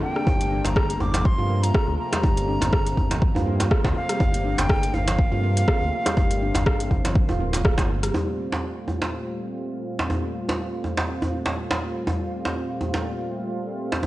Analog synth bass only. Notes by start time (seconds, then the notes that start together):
0.27 G1
0.65 G1
1.01 G1
1.38 G2
1.88 D2
2.24 G1
2.61 G1
2.97 G1
3.35 G2
3.84 D2
4.20 G1
4.58 G1
4.94 G1
5.32 G2
5.81 D2
6.17 G1
6.55 G1
6.91 G1
7.29 D1
7.78 G1